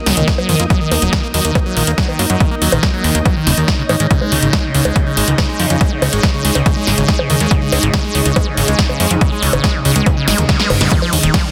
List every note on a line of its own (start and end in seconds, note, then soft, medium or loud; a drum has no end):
0.00 5.52 A#3 medium
0.00 10.90 D#4 medium
0.00 5.12 A#4 medium
0.00 1.65 D#5 medium
0.00 10.90 D#5 medium
0.00 4.69 D#6 medium
0.06 0.13 C#2 loud
0.06 0.16 F#3 loud
0.06 snare medium
0.06 open hi-hat loud
0.17 0.24 C#2 medium
0.17 0.27 D#3 loud
0.17 closed hi-hat medium
0.28 kick loud
0.28 snare loud
0.28 closed hi-hat medium
0.38 0.48 F#3 loud
0.38 high bongo medium
0.49 0.56 F2 medium
0.49 0.59 D#3 loud
0.49 open hi-hat loud
0.60 0.66 F2 medium
0.60 0.64 A#3 loud
0.60 closed hi-hat medium
0.70 0.80 F#3 loud
0.70 kick loud
0.70 closed hi-hat medium
0.81 0.91 D#3 loud
0.91 0.98 D#2 medium
0.91 0.96 A#3 loud
0.91 open hi-hat loud
0.91 high bongo soft
1.02 1.09 D#1 medium
1.02 1.12 F#3 loud
1.02 closed hi-hat medium
1.13 1.23 D#3 loud
1.13 kick loud
1.13 snare loud
1.13 closed hi-hat medium
1.23 1.28 A#3 loud
1.34 1.41 D#2 loud
1.34 1.44 F#3 loud
1.34 open hi-hat loud
1.45 1.51 D#2 medium
1.45 1.55 D#3 loud
1.45 closed hi-hat medium
1.52 1.60 A#3 loud
1.52 11.52 C#5 medium
1.52 kick loud
1.52 closed hi-hat medium
1.52 high bongo medium
1.66 1.76 F#3 loud
1.77 1.83 A#1 loud
1.77 1.87 D#3 loud
1.77 open hi-hat loud
1.87 1.94 D#2 medium
1.87 1.92 A#3 loud
1.87 closed hi-hat medium
1.98 2.08 F#3 loud
1.98 kick loud
1.98 snare loud
1.98 closed hi-hat medium
2.09 2.19 D#3 loud
2.09 high bongo soft
2.19 2.26 F#2 medium
2.19 2.23 A#3 loud
2.19 open hi-hat loud
2.30 2.36 F#2 medium
2.30 2.40 F#3 loud
2.30 closed hi-hat medium
2.40 2.51 D#3 loud
2.40 kick loud
2.40 closed hi-hat medium
2.51 2.55 A#3 loud
2.62 2.68 D#2 medium
2.62 2.72 F#3 loud
2.62 open hi-hat loud
2.72 2.79 A#1 medium
2.72 2.82 D#3 loud
2.72 closed hi-hat medium
2.72 high bongo medium
2.83 kick loud
2.83 snare loud
2.83 closed hi-hat medium
2.94 3.04 F#3 loud
3.04 3.11 D#2 loud
3.04 3.14 D#3 loud
3.04 open hi-hat loud
3.15 3.22 D#2 medium
3.15 3.19 A#3 loud
3.15 closed hi-hat medium
3.26 3.36 F#3 loud
3.26 kick loud
3.26 closed hi-hat medium
3.26 high bongo soft
3.36 3.46 D#3 loud
3.47 3.53 D#1 loud
3.47 3.54 C#3 loud
3.47 snare medium
3.47 open hi-hat loud
3.57 3.64 D#2 medium
3.57 3.70 D#3 medium
3.57 closed hi-hat medium
3.68 3.72 D#4 loud
3.68 kick loud
3.68 snare loud
3.68 closed hi-hat medium
3.79 3.83 C#3 loud
3.89 3.96 G#2 medium
3.89 3.97 D#3 loud
3.89 open hi-hat loud
3.89 high bongo medium
4.00 4.07 G#2 medium
4.00 4.07 D#3 loud
4.00 closed hi-hat medium
4.11 4.21 C#3 loud
4.11 10.91 G#3 medium
4.11 kick loud
4.11 closed hi-hat medium
4.15 11.52 G#4 medium
4.21 4.33 G#3 loud
4.21 high bongo soft
4.32 4.39 C#2 medium
4.32 4.42 C3 medium
4.32 10.91 C#6 medium
4.32 open hi-hat loud
4.42 4.49 G#1 medium
4.42 4.53 C#3 loud
4.42 closed hi-hat medium
4.53 4.65 G#3 loud
4.53 kick loud
4.53 snare loud
4.53 closed hi-hat medium
4.64 4.74 C3 medium
4.74 4.81 C#2 loud
4.74 4.85 C#3 loud
4.74 open hi-hat medium
4.85 4.92 C#2 medium
4.85 4.97 G#3 loud
4.85 closed hi-hat medium
4.85 high bongo medium
4.96 5.06 C3 medium
4.96 kick loud
4.96 closed hi-hat medium
5.06 5.16 C#3 loud
5.17 5.24 G#1 loud
5.17 5.29 G#3 loud
5.17 open hi-hat loud
5.28 5.34 C#2 medium
5.28 5.38 C3 medium
5.28 closed hi-hat medium
5.38 5.48 C#3 loud
5.38 kick loud
5.38 snare loud
5.38 closed hi-hat medium
5.38 high bongo soft
5.49 5.61 G#3 loud
5.60 5.66 F2 medium
5.60 5.70 C3 medium
5.60 open hi-hat loud
5.70 5.77 F2 medium
5.70 5.80 C#3 loud
5.70 closed hi-hat medium
5.81 5.93 G#3 loud
5.81 kick loud
5.81 closed hi-hat medium
5.91 6.02 C3 medium
6.02 6.09 C#2 medium
6.02 6.12 C#3 loud
6.02 open hi-hat loud
6.02 high bongo medium
6.13 6.19 G#1 medium
6.13 6.25 G#3 loud
6.13 closed hi-hat medium
6.23 6.33 C3 medium
6.23 kick loud
6.23 snare loud
6.23 closed hi-hat medium
6.34 6.44 C#3 loud
6.45 6.51 C#2 loud
6.45 6.57 G#3 loud
6.45 open hi-hat medium
6.55 6.62 C#2 medium
6.55 6.65 C3 medium
6.55 closed hi-hat medium
6.55 high bongo soft
6.66 6.76 C#3 loud
6.66 kick loud
6.66 closed hi-hat medium
6.77 6.89 G#3 loud
6.87 6.94 G#1 loud
6.87 6.97 C3 medium
6.87 snare medium
6.87 open hi-hat loud
6.98 7.05 G#1 medium
6.98 7.08 C#3 loud
6.98 closed hi-hat medium
7.08 7.21 G#3 loud
7.08 kick loud
7.08 snare loud
7.08 closed hi-hat medium
7.19 7.29 C3 medium
7.19 high bongo medium
7.30 7.36 D#2 medium
7.30 7.40 C#3 loud
7.30 open hi-hat medium
7.40 7.47 D#2 medium
7.40 7.53 G#3 loud
7.40 closed hi-hat medium
7.51 7.61 C3 medium
7.51 kick loud
7.51 closed hi-hat medium
7.62 7.72 C#3 loud
7.72 7.79 C#2 medium
7.72 7.84 G#3 loud
7.72 open hi-hat loud
7.72 high bongo soft
7.83 7.90 G#1 medium
7.83 7.93 C3 medium
7.83 closed hi-hat medium
7.94 8.04 C#3 loud
7.94 kick loud
7.94 snare loud
7.94 closed hi-hat medium
8.04 8.16 G#3 loud
8.15 8.22 C#2 loud
8.15 8.25 C3 medium
8.15 open hi-hat medium
8.25 8.32 C#2 medium
8.25 8.36 C#3 loud
8.25 closed hi-hat medium
8.36 8.48 G#3 loud
8.36 kick loud
8.36 closed hi-hat medium
8.36 high bongo medium
8.47 8.57 C3 medium
8.57 8.64 G#1 medium
8.57 8.68 C#3 loud
8.57 open hi-hat loud
8.68 8.75 C#2 medium
8.68 8.80 G#3 loud
8.68 closed hi-hat medium
8.79 8.89 C3 medium
8.79 kick loud
8.79 snare loud
8.79 closed hi-hat medium
8.89 8.99 C#3 loud
8.89 high bongo soft
9.00 9.07 F2 loud
9.00 9.12 G#3 loud
9.00 open hi-hat medium
9.11 9.17 F2 medium
9.11 9.21 C3 medium
9.11 closed hi-hat medium
9.21 9.31 C#3 loud
9.21 kick loud
9.21 closed hi-hat medium
9.32 9.44 G#3 loud
9.43 9.49 C#2 medium
9.43 9.53 C3 medium
9.43 open hi-hat loud
9.53 9.60 G#1 medium
9.53 9.63 C#3 loud
9.53 closed hi-hat medium
9.53 high bongo medium
9.64 9.76 G#3 loud
9.64 kick loud
9.64 snare loud
9.64 closed hi-hat medium
9.74 9.85 C3 medium
9.85 9.92 C#2 loud
9.85 9.95 C#3 loud
9.85 open hi-hat medium
9.96 10.02 C#2 medium
9.96 10.08 G#3 loud
9.96 closed hi-hat medium
10.06 10.16 C3 medium
10.06 kick loud
10.06 closed hi-hat medium
10.06 high bongo soft
10.06 reverse cymbal medium
10.17 10.27 C#3 loud
10.28 10.34 G#1 loud
10.28 10.40 G#3 loud
10.28 snare medium
10.28 open hi-hat loud
10.38 10.45 D#2 medium
10.38 10.48 C3 medium
10.38 closed hi-hat medium
10.49 10.59 C#3 loud
10.49 kick loud
10.49 snare medium
10.49 closed hi-hat medium
10.60 10.72 G#3 loud
10.60 snare medium
10.70 10.77 G#1 loud
10.70 10.80 C3 medium
10.70 mid tom loud
10.70 open hi-hat medium
10.70 high bongo medium
10.81 10.87 G#1 medium
10.81 10.91 C#3 loud
10.81 snare medium
10.81 closed hi-hat medium
10.91 11.02 D#3 loud
10.91 11.52 A#3 medium
10.91 11.52 D#4 medium
10.91 11.52 D#5 medium
10.91 kick loud
10.91 closed hi-hat medium
10.91 ride medium
11.02 11.14 F3 loud
11.02 high bongo soft
11.07 11.52 A#4 loud
11.13 11.19 D#2 medium
11.13 11.23 C#3 medium
11.13 11.52 D#5 medium
11.13 open hi-hat loud
11.23 11.30 D#1 medium
11.23 11.33 D#3 loud
11.23 closed hi-hat medium
11.34 11.46 F3 loud
11.34 kick loud
11.34 snare loud
11.34 closed hi-hat medium
11.34 ride medium
11.45 11.52 C#3 medium